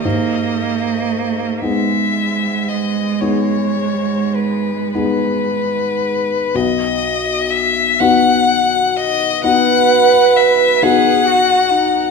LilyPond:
<<
  \new Staff \with { instrumentName = "Violin" } { \time 12/8 \key gis \minor \tempo 4. = 40 dis''4. e''4 dis''8 cis''4 b'8 b'4. | \key b \major dis''4 e''8 fis''4 dis''8 fis''4 e''8 fis''4. | }
  \new Staff \with { instrumentName = "Cello" } { \time 12/8 \key gis \minor ais4. gis1 r8 | \key b \major r2. b'4. gis'8 fis'8 dis'8 | }
  \new Staff \with { instrumentName = "Grand piano" } { \time 12/8 \key gis \minor gis,4. <b dis' gis'>4. <b dis' gis'>4. <b dis' gis'>4. | \key b \major b,,4. <b dis' fis'>4. <b dis' fis'>4. <b dis' fis'>4. | }
>>